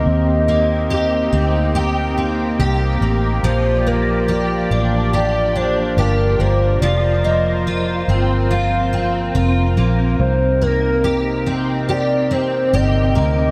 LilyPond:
<<
  \new Staff \with { instrumentName = "Soft synth lead" } { \time 4/4 \key c \minor \tempo 4 = 71 ees''2.~ ees''8 r8 | c''8 bes'4 r8 d''8 c''8 bes'8 c''8 | d''8 ees''4 r8 f''4 r4 | c''8 bes'4 r8 d''8 c''8 ees''8 ees''8 | }
  \new Staff \with { instrumentName = "Analog synth pad" } { \time 4/4 \key c \minor << { <ees' g'>1 | d''1 | <f bes' c''>1 | <c ees'>1 | } \\ { <bes c'>1 | f'1~ | f'1 | c'1 | } >> }
  \new Staff \with { instrumentName = "Twelve-string acoustic guitar" } { \time 4/4 \key c \minor r8 bes8 g'8 c'8 g'8 c'8 g'8 bes8 | f8 bes8 g'8 d'8 g'8 d'8 g'8 bes8 | f8 bes8 f'8 c'8 f'8 c'8 f'8 bes8 | r8 bes8 g'8 c'8 g'8 c'8 g'8 bes8 | }
  \new Staff \with { instrumentName = "Fingered electric bass" } { \clef bass \time 4/4 \key c \minor ees,4. d,4. c,8 a,,8 | bes,,4. a,,4. g,,8 g,,8 | f,,4. g,,4. f,,8 bes,,8 | c,4. bes,,4. g,,8 d,8 | }
>>